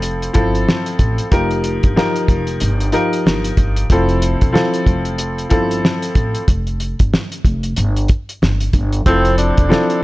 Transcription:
Already playing: F1 F3 C4 E4 A4
0.02 closed hi-hat
0.22 closed hi-hat
0.33 G1 F3 C4 E4 A4, kick, closed hi-hat
0.55 closed hi-hat
0.69 snare
0.86 closed hi-hat
0.99 A1, kick, closed hi-hat
1.18 closed hi-hat
1.31 F1 F3 D#4 G4 A#4, kick, closed hi-hat
1.51 closed hi-hat
1.64 closed hi-hat
1.83 G1, kick, closed hi-hat
1.96 F3 D#4 G4 A#4, snare
2.16 closed hi-hat
2.28 F1, kick, closed hi-hat
2.47 closed hi-hat
2.60 G1, closed hi-hat
2.80 closed hi-hat
2.92 F3 D#4 G4 A#4, closed hi-hat
3.13 closed hi-hat
3.26 G1, snare
3.44 closed hi-hat
3.57 G1, kick, closed hi-hat
3.76 closed hi-hat
3.90 F1 F3 C4 E4 A4, kick, closed hi-hat
4.09 closed hi-hat
4.22 closed hi-hat
4.41 E1, kick, closed hi-hat
4.52 F3 C4 E4 A4, snare
4.74 closed hi-hat
4.86 F1, kick, closed hi-hat
5.05 closed hi-hat
5.18 closed hi-hat
5.38 closed hi-hat
5.50 G1 F3 C4 E4 A4, kick, closed hi-hat
5.71 closed hi-hat
5.85 snare
6.02 closed hi-hat
6.15 A1, kick, closed hi-hat
6.35 closed hi-hat
6.48 F1, kick, closed hi-hat
6.67 closed hi-hat
6.80 closed hi-hat
6.99 G1, kick, closed hi-hat
7.14 snare
7.32 closed hi-hat
7.45 F1, kick, closed hi-hat
7.63 closed hi-hat
7.76 G1, closed hi-hat
7.97 closed hi-hat
8.08 kick, closed hi-hat
8.29 closed hi-hat
8.42 G1, snare
8.60 closed hi-hat
8.73 G1, kick, closed hi-hat
8.93 closed hi-hat
9.06 F1 F3 C4 E4 A4, kick, closed hi-hat
9.25 closed hi-hat
9.38 D4, closed hi-hat
9.57 E1, kick, closed hi-hat
9.69 F3 C4 E4 A4, snare
9.90 closed hi-hat

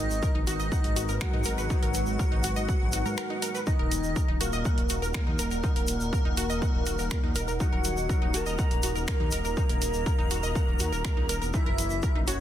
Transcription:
Already playing: G#3 D#4 A#4 B4 D#5
0.10 G#1, shaker
0.22 A#4, kick, shaker
0.35 G#1 D#4
0.47 G#1 D#4 F#4 D#5, open hi-hat, shaker
0.60 G#1 D#5, shaker
0.72 F#5, kick, shaker
0.84 G#1, open hi-hat
0.96 G#1 F#4, open hi-hat, shaker
1.09 G#1 A#4, shaker
1.21 F#4 A#4 F#5, finger snap, kick, shaker
1.33 G#2 D#4
1.44 G#1 A#4, open hi-hat, shaker
1.58 G#1 B4, shaker
1.70 D#4, kick, shaker
1.83 G#1 A#4, open hi-hat
1.94 G#1, open hi-hat, shaker
2.06 G#1, shaker
2.19 A#4, kick, shaker
2.32 G#1 D#4
2.44 G#1 F#4, open hi-hat, shaker
2.56 G#1 D#5, shaker
2.69 F#5, kick, shaker
2.81 G#1
2.92 G#1 F#4, open hi-hat, shaker
3.06 G#2 A#4, shaker
3.17 A#4, finger snap, shaker
3.30 D#4
3.42 A#4, open hi-hat, shaker
3.55 B4, shaker
3.67 D#4 D#5 F#5, kick, shaker
3.79 D#1 A#4
3.91 D#1, open hi-hat, shaker
4.04 D#1, shaker
4.16 A#4, kick, shaker
4.28 D#1 D#4
4.41 D#1 A#3 F#4 A#4, open hi-hat, shaker
4.53 D#1 D#5, shaker
4.65 F#5, kick, shaker
4.78 D#1, open hi-hat
4.89 D#1 F#4, open hi-hat, shaker
5.02 D#1 A#4, shaker
5.13 A#3 A#4, finger snap, kick, shaker
5.27 D#2 D#4
5.39 D#1 A#4, open hi-hat, shaker
5.51 D#1 A#4, shaker
5.63 D#4, kick, shaker
5.76 D#1 A#4, open hi-hat
5.87 D#1, open hi-hat, shaker
6.00 D#1, shaker
6.13 A#4, kick, shaker
6.25 D#1 D#4
6.37 D#1 F#4, open hi-hat, shaker
6.50 D#1 D#5, shaker
6.62 F#5, kick, shaker
6.74 D#1
6.86 D#1 F#4, open hi-hat, shaker
6.99 D#1 A#4, shaker
7.11 A#4, finger snap, kick, shaker
7.23 D#2 D#4
7.35 D#1 A#4, open hi-hat, shaker
7.48 D#1 A#4, shaker
7.60 D#4 F#4 F#5, kick, shaker
7.73 D#1 A#4
7.84 D#1, open hi-hat, shaker
7.97 D#1, shaker
8.09 A#4, kick, shaker
8.22 D#1 D#4
8.34 D#1 F#4 A#4 A#5, open hi-hat, shaker
8.46 D#1 D#5, shaker
8.58 F#5, kick, shaker
8.71 D#1, open hi-hat
8.83 D#1 F#4, open hi-hat, shaker
8.96 D#1 A#4, shaker
9.07 A#4 A#5, finger snap, kick, shaker
9.20 D#2 D#4
9.31 D#1 A#4, open hi-hat, shaker
9.45 D#1 A#4, shaker
9.57 D#4, kick, shaker
9.69 D#1 A#4, open hi-hat
9.82 D#1, open hi-hat, shaker
9.93 D#1, shaker
10.06 A#4, kick, shaker
10.19 D#1 D#4
10.31 D#1 F#4, open hi-hat, shaker
10.43 D#1 D#5, shaker
10.55 F#5, kick, shaker
10.68 D#1
10.79 D#2 F#4, open hi-hat, shaker
10.92 D#1 A#4, shaker
11.05 A#4, finger snap, kick, shaker
11.17 C#2 D#4
11.29 D#1 A#4, open hi-hat, shaker
11.42 E1 A#4, shaker
11.53 C#4 D#4 E4 F#4 A#4 E5, kick, shaker
11.66 F#1 A#4
11.78 F#1, open hi-hat, shaker
11.90 F#1, shaker
12.02 A#4, kick, shaker
12.15 F#1 D#4
12.27 F#1 C#4 F#4 C#5, open hi-hat, shaker

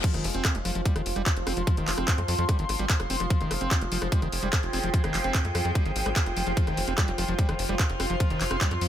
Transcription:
0.04 F3 F4, kick, closed hi-hat, crash
0.14 F1 D#3, cross-stick, closed hi-hat
0.24 F1 F3, open hi-hat
0.30 C5
0.34 F1 C4, closed hi-hat
0.45 kick, cross-stick, clap, closed hi-hat
0.55 F1 F3, closed hi-hat
0.65 F1 F3, cross-stick, open hi-hat
0.75 F1 F3, closed hi-hat
0.85 G3, kick, closed hi-hat
0.96 F1 D#3 C6, cross-stick, closed hi-hat
1.06 F1, open hi-hat
1.16 F1 G3, cross-stick, closed hi-hat
1.26 kick, clap, closed hi-hat
1.37 F1, closed hi-hat
1.47 F1 C4, cross-stick, open hi-hat
1.57 F1 F3, closed hi-hat
1.67 F3, kick, cross-stick, closed hi-hat
1.77 F1 D#3, closed hi-hat
1.88 F1 F3, clap, open hi-hat
1.98 F1 C4, cross-stick, closed hi-hat
2.08 kick, clap, closed hi-hat
2.18 F2 F3, cross-stick, closed hi-hat
2.28 F2 F3, open hi-hat
2.39 F2 F3, closed hi-hat
2.49 G3, kick, cross-stick, closed hi-hat
2.59 G1 D#3, closed hi-hat
2.69 G#1, cross-stick, open hi-hat
2.79 G#1 G3, closed hi-hat
2.90 kick, clap, closed hi-hat
3.00 F1, cross-stick, closed hi-hat
3.10 F1 C4, open hi-hat
3.20 F1 F3, cross-stick, closed hi-hat
3.30 F3 G#4, kick, closed hi-hat
3.41 F1 D#3, closed hi-hat
3.51 F1 F3, cross-stick, open hi-hat
3.61 F1 C4, closed hi-hat
3.71 kick, cross-stick, clap, closed hi-hat
3.81 F1 F3, closed hi-hat
3.92 F1 F3, open hi-hat
4.02 F1 F3, cross-stick, closed hi-hat
4.12 G3, kick, closed hi-hat
4.22 F1 D#3 G5, cross-stick, closed hi-hat
4.32 F1, open hi-hat
4.43 F1 G3, closed hi-hat
4.53 kick, cross-stick, clap, closed hi-hat
4.63 F1, closed hi-hat
4.73 F1 C4, cross-stick, open hi-hat
4.83 F1 F3, closed hi-hat
4.94 F3, kick, closed hi-hat
5.04 F1 D#3, cross-stick, closed hi-hat
5.14 F1 F3, clap, open hi-hat
5.24 F1 C4, cross-stick, closed hi-hat
5.34 kick, clap, closed hi-hat
5.45 F2 F3, closed hi-hat
5.55 F2 F3, cross-stick, open hi-hat
5.65 F2 F3, closed hi-hat
5.75 G3, kick, cross-stick, closed hi-hat
5.86 G1 D#3, closed hi-hat
5.96 G#1, open hi-hat
6.06 G#1 G3, cross-stick, closed hi-hat
6.16 G4, kick, clap, closed hi-hat
6.26 F1, cross-stick, closed hi-hat
6.37 F1 F3, open hi-hat
6.47 F1 F3, closed hi-hat
6.57 F3 F4, kick, closed hi-hat
6.67 F1 D#3, cross-stick, closed hi-hat
6.77 F1 F3, open hi-hat
6.88 F1 C4, closed hi-hat
6.98 G3, kick, cross-stick, clap, closed hi-hat
7.08 F1 F3, closed hi-hat
7.18 F1 F3, cross-stick, open hi-hat
7.28 F1 F3
7.39 G3, kick, closed hi-hat
7.49 F1 D#3 C6, cross-stick, closed hi-hat
7.59 F1, open hi-hat
7.69 F1 G3, cross-stick, closed hi-hat
7.79 kick, clap, closed hi-hat
7.90 F1, closed hi-hat
8.00 F1 C4, cross-stick, open hi-hat
8.10 F1 F3, closed hi-hat
8.20 F3, kick, cross-stick, closed hi-hat
8.30 F1 D#3, closed hi-hat
8.41 F1 F3, clap, open hi-hat
8.51 F1 C4, cross-stick, closed hi-hat
8.61 G3, kick, clap, closed hi-hat
8.71 F2 F3, cross-stick, closed hi-hat
8.81 F2 F3, open hi-hat

